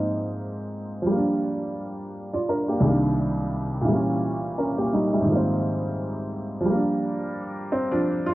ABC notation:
X:1
M:4/4
L:1/16
Q:"Swing 16ths" 1/4=86
K:Gphr
V:1 name="Upright piano"
z12 z [Fd] [DB] [B,G]- | [B,G] z8 z [_DB] [B,G] [G,E] [G,_F]2 z | z12 C [F,D]2 F |]
V:2 name="Upright piano" clef=bass
[A,,F,B,CE]6 [F,G,B,D]8- [F,G,B,D]2 | [C,,E,G,B,D]6 [B,,_F,G,B,_D]8 [A,,E,=F,B,C]2- | [A,,E,F,B,C]6 [F,G,B,D]4 z6 |]